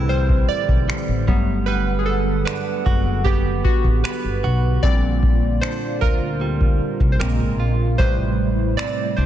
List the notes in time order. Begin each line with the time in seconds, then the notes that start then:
Already playing: C2 A2 D3 E3 G3 C4 E4 G#4 A4 B4
0.09 G3 C5
0.29 kick
0.48 D5, muted upright bass stroke
0.69 B1, kick
0.89 G3, finger snap
1.08 A1
1.27 G1 F#3 G3 A3 B3 F#5, kick
1.66 G3 B4
1.99 G#4
2.06 A4
2.45 D4 B4, finger snap
2.86 F#1 F#4, kick
3.24 B3 G4, kick
3.64 F#4, kick
3.84 A1, kick
4.04 B3 B4, finger snap
4.24 G1
4.44 B1 F#4
4.83 A#1 A#2 D3 G3 A#3 C4 F4 D5, kick
5.23 kick
5.61 D4 C5, finger snap
6.01 D2 F4 A#4, kick
6.41 G3
6.61 kick
6.80 muted upright bass stroke
7.00 C2, kick
7.12 C5
7.20 A#1 A#2 C#3 G#3 A#3 C4 F4 A#4, finger snap
7.40 G#1
7.60 A#1 F4
7.98 A1 A2 C3 G3 A3 E4 B4 C5, kick
8.77 C4 D5, finger snap
9.17 C2 D4 C5